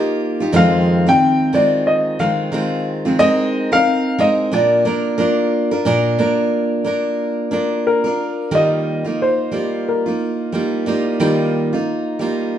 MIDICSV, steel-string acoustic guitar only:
0, 0, Header, 1, 2, 480
1, 0, Start_track
1, 0, Key_signature, -3, "major"
1, 0, Tempo, 665927
1, 391, Time_signature, 4, 2, 24, 8
1, 9070, End_track
2, 0, Start_track
2, 0, Title_t, "Steel-string acoustic guitar"
2, 0, Program_c, 0, 25
2, 0, Note_on_c, 0, 58, 64
2, 0, Note_on_c, 0, 63, 71
2, 0, Note_on_c, 0, 65, 86
2, 0, Note_on_c, 0, 67, 68
2, 282, Note_off_c, 0, 65, 0
2, 290, Note_on_c, 0, 65, 51
2, 291, Note_off_c, 0, 67, 0
2, 292, Note_off_c, 0, 58, 0
2, 296, Note_off_c, 0, 63, 0
2, 300, Note_on_c, 0, 67, 49
2, 304, Note_on_c, 0, 63, 51
2, 378, Note_on_c, 0, 41, 82
2, 382, Note_on_c, 0, 51, 90
2, 383, Note_on_c, 0, 53, 80
2, 384, Note_off_c, 0, 63, 0
2, 385, Note_off_c, 0, 65, 0
2, 386, Note_off_c, 0, 67, 0
2, 387, Note_on_c, 0, 56, 93
2, 389, Note_on_c, 0, 60, 96
2, 393, Note_on_c, 0, 65, 92
2, 759, Note_off_c, 0, 65, 0
2, 768, Note_off_c, 0, 41, 0
2, 768, Note_off_c, 0, 60, 0
2, 768, Note_on_c, 0, 65, 57
2, 769, Note_off_c, 0, 51, 0
2, 770, Note_off_c, 0, 53, 0
2, 772, Note_off_c, 0, 56, 0
2, 776, Note_on_c, 0, 60, 57
2, 780, Note_on_c, 0, 56, 49
2, 788, Note_on_c, 0, 51, 56
2, 1092, Note_off_c, 0, 51, 0
2, 1100, Note_off_c, 0, 56, 0
2, 1101, Note_on_c, 0, 51, 66
2, 1106, Note_off_c, 0, 60, 0
2, 1106, Note_off_c, 0, 65, 0
2, 1108, Note_on_c, 0, 56, 58
2, 1115, Note_on_c, 0, 60, 67
2, 1119, Note_on_c, 0, 65, 70
2, 1577, Note_off_c, 0, 51, 0
2, 1580, Note_on_c, 0, 51, 62
2, 1584, Note_off_c, 0, 56, 0
2, 1587, Note_on_c, 0, 56, 66
2, 1588, Note_off_c, 0, 60, 0
2, 1589, Note_off_c, 0, 65, 0
2, 1591, Note_on_c, 0, 60, 67
2, 1598, Note_on_c, 0, 65, 62
2, 1806, Note_off_c, 0, 51, 0
2, 1812, Note_off_c, 0, 56, 0
2, 1814, Note_on_c, 0, 51, 65
2, 1818, Note_off_c, 0, 60, 0
2, 1821, Note_on_c, 0, 56, 77
2, 1823, Note_off_c, 0, 65, 0
2, 1826, Note_on_c, 0, 60, 72
2, 1831, Note_on_c, 0, 65, 80
2, 2190, Note_off_c, 0, 65, 0
2, 2197, Note_off_c, 0, 60, 0
2, 2199, Note_on_c, 0, 65, 54
2, 2204, Note_off_c, 0, 51, 0
2, 2206, Note_on_c, 0, 60, 54
2, 2207, Note_off_c, 0, 56, 0
2, 2215, Note_on_c, 0, 56, 49
2, 2219, Note_on_c, 0, 51, 47
2, 2290, Note_off_c, 0, 56, 0
2, 2296, Note_off_c, 0, 51, 0
2, 2299, Note_off_c, 0, 60, 0
2, 2299, Note_on_c, 0, 56, 76
2, 2300, Note_off_c, 0, 65, 0
2, 2302, Note_on_c, 0, 63, 85
2, 2308, Note_on_c, 0, 60, 88
2, 2310, Note_on_c, 0, 70, 95
2, 2671, Note_off_c, 0, 70, 0
2, 2680, Note_on_c, 0, 70, 59
2, 2682, Note_off_c, 0, 60, 0
2, 2686, Note_off_c, 0, 56, 0
2, 2687, Note_off_c, 0, 63, 0
2, 2690, Note_on_c, 0, 60, 54
2, 2700, Note_on_c, 0, 63, 44
2, 3014, Note_off_c, 0, 63, 0
2, 3017, Note_on_c, 0, 56, 65
2, 3020, Note_off_c, 0, 70, 0
2, 3022, Note_off_c, 0, 60, 0
2, 3023, Note_on_c, 0, 63, 71
2, 3030, Note_on_c, 0, 60, 66
2, 3033, Note_on_c, 0, 70, 63
2, 3255, Note_on_c, 0, 46, 61
2, 3257, Note_off_c, 0, 56, 0
2, 3258, Note_off_c, 0, 70, 0
2, 3260, Note_off_c, 0, 63, 0
2, 3260, Note_on_c, 0, 58, 64
2, 3263, Note_off_c, 0, 60, 0
2, 3263, Note_on_c, 0, 62, 69
2, 3266, Note_on_c, 0, 65, 66
2, 3267, Note_on_c, 0, 70, 77
2, 3488, Note_off_c, 0, 58, 0
2, 3494, Note_off_c, 0, 62, 0
2, 3497, Note_on_c, 0, 58, 61
2, 3499, Note_off_c, 0, 46, 0
2, 3500, Note_off_c, 0, 65, 0
2, 3502, Note_on_c, 0, 62, 55
2, 3503, Note_off_c, 0, 70, 0
2, 3509, Note_on_c, 0, 65, 64
2, 3512, Note_on_c, 0, 70, 58
2, 3723, Note_off_c, 0, 58, 0
2, 3729, Note_off_c, 0, 62, 0
2, 3732, Note_on_c, 0, 58, 70
2, 3737, Note_off_c, 0, 65, 0
2, 3738, Note_on_c, 0, 62, 66
2, 3742, Note_off_c, 0, 70, 0
2, 3746, Note_on_c, 0, 65, 73
2, 3751, Note_on_c, 0, 70, 75
2, 4109, Note_off_c, 0, 70, 0
2, 4118, Note_off_c, 0, 65, 0
2, 4118, Note_on_c, 0, 70, 64
2, 4122, Note_off_c, 0, 58, 0
2, 4125, Note_off_c, 0, 62, 0
2, 4127, Note_on_c, 0, 65, 46
2, 4133, Note_on_c, 0, 62, 44
2, 4216, Note_off_c, 0, 62, 0
2, 4218, Note_on_c, 0, 46, 73
2, 4219, Note_off_c, 0, 65, 0
2, 4219, Note_off_c, 0, 70, 0
2, 4222, Note_on_c, 0, 58, 73
2, 4225, Note_on_c, 0, 62, 82
2, 4227, Note_on_c, 0, 65, 84
2, 4233, Note_on_c, 0, 70, 96
2, 4449, Note_off_c, 0, 58, 0
2, 4451, Note_off_c, 0, 62, 0
2, 4458, Note_on_c, 0, 58, 62
2, 4459, Note_off_c, 0, 65, 0
2, 4460, Note_on_c, 0, 62, 65
2, 4461, Note_off_c, 0, 46, 0
2, 4463, Note_off_c, 0, 70, 0
2, 4468, Note_on_c, 0, 65, 67
2, 4471, Note_on_c, 0, 70, 73
2, 4931, Note_off_c, 0, 58, 0
2, 4934, Note_off_c, 0, 62, 0
2, 4934, Note_on_c, 0, 58, 64
2, 4943, Note_on_c, 0, 62, 59
2, 4945, Note_off_c, 0, 65, 0
2, 4948, Note_on_c, 0, 65, 64
2, 4950, Note_off_c, 0, 70, 0
2, 4953, Note_on_c, 0, 70, 75
2, 5410, Note_off_c, 0, 58, 0
2, 5410, Note_off_c, 0, 62, 0
2, 5413, Note_on_c, 0, 58, 66
2, 5419, Note_on_c, 0, 62, 62
2, 5424, Note_off_c, 0, 65, 0
2, 5427, Note_off_c, 0, 70, 0
2, 5427, Note_on_c, 0, 65, 62
2, 5430, Note_on_c, 0, 70, 71
2, 5787, Note_off_c, 0, 70, 0
2, 5795, Note_on_c, 0, 70, 50
2, 5800, Note_off_c, 0, 65, 0
2, 5804, Note_off_c, 0, 58, 0
2, 5807, Note_off_c, 0, 62, 0
2, 5809, Note_on_c, 0, 65, 53
2, 5815, Note_on_c, 0, 62, 48
2, 6136, Note_on_c, 0, 51, 68
2, 6136, Note_on_c, 0, 55, 64
2, 6137, Note_off_c, 0, 62, 0
2, 6138, Note_off_c, 0, 65, 0
2, 6139, Note_off_c, 0, 70, 0
2, 6140, Note_on_c, 0, 58, 71
2, 6143, Note_on_c, 0, 63, 68
2, 6147, Note_on_c, 0, 65, 69
2, 6510, Note_off_c, 0, 65, 0
2, 6519, Note_on_c, 0, 65, 45
2, 6520, Note_off_c, 0, 63, 0
2, 6526, Note_off_c, 0, 51, 0
2, 6526, Note_off_c, 0, 55, 0
2, 6528, Note_off_c, 0, 58, 0
2, 6528, Note_on_c, 0, 63, 48
2, 6539, Note_on_c, 0, 58, 41
2, 6855, Note_off_c, 0, 58, 0
2, 6858, Note_on_c, 0, 55, 55
2, 6862, Note_off_c, 0, 65, 0
2, 6863, Note_off_c, 0, 63, 0
2, 6864, Note_on_c, 0, 58, 56
2, 6872, Note_on_c, 0, 63, 57
2, 6876, Note_on_c, 0, 65, 61
2, 7242, Note_off_c, 0, 65, 0
2, 7249, Note_off_c, 0, 55, 0
2, 7250, Note_on_c, 0, 65, 47
2, 7251, Note_off_c, 0, 58, 0
2, 7252, Note_off_c, 0, 63, 0
2, 7260, Note_on_c, 0, 63, 34
2, 7264, Note_on_c, 0, 58, 36
2, 7586, Note_off_c, 0, 58, 0
2, 7586, Note_on_c, 0, 55, 62
2, 7589, Note_off_c, 0, 65, 0
2, 7591, Note_off_c, 0, 63, 0
2, 7594, Note_on_c, 0, 58, 60
2, 7600, Note_on_c, 0, 63, 61
2, 7604, Note_on_c, 0, 65, 69
2, 7820, Note_off_c, 0, 55, 0
2, 7827, Note_off_c, 0, 58, 0
2, 7829, Note_on_c, 0, 55, 60
2, 7833, Note_off_c, 0, 63, 0
2, 7835, Note_on_c, 0, 58, 68
2, 7836, Note_off_c, 0, 65, 0
2, 7842, Note_on_c, 0, 63, 73
2, 7845, Note_on_c, 0, 65, 73
2, 8064, Note_off_c, 0, 55, 0
2, 8067, Note_off_c, 0, 58, 0
2, 8071, Note_off_c, 0, 63, 0
2, 8071, Note_on_c, 0, 51, 75
2, 8073, Note_on_c, 0, 55, 76
2, 8074, Note_off_c, 0, 65, 0
2, 8075, Note_on_c, 0, 58, 70
2, 8080, Note_on_c, 0, 63, 91
2, 8083, Note_on_c, 0, 65, 88
2, 8444, Note_off_c, 0, 65, 0
2, 8453, Note_on_c, 0, 65, 52
2, 8455, Note_off_c, 0, 63, 0
2, 8457, Note_off_c, 0, 51, 0
2, 8458, Note_off_c, 0, 55, 0
2, 8459, Note_off_c, 0, 58, 0
2, 8464, Note_on_c, 0, 63, 54
2, 8473, Note_on_c, 0, 58, 46
2, 8788, Note_on_c, 0, 55, 64
2, 8789, Note_off_c, 0, 58, 0
2, 8792, Note_off_c, 0, 65, 0
2, 8794, Note_off_c, 0, 63, 0
2, 8798, Note_on_c, 0, 58, 61
2, 8803, Note_on_c, 0, 63, 67
2, 8807, Note_on_c, 0, 65, 77
2, 9070, Note_off_c, 0, 55, 0
2, 9070, Note_off_c, 0, 58, 0
2, 9070, Note_off_c, 0, 63, 0
2, 9070, Note_off_c, 0, 65, 0
2, 9070, End_track
0, 0, End_of_file